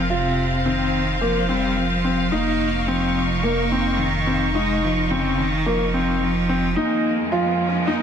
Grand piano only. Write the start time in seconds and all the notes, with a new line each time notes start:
0.10 F4
0.66 C4
1.21 A#3
1.49 C4
2.04 C4
2.32 D#4
2.88 C4
3.44 A#3
3.72 C4
4.27 C4
4.55 D#4
5.11 C4
5.66 A#3
5.94 C4
6.49 C4
6.76 D#4
7.32 F4
7.87 D#4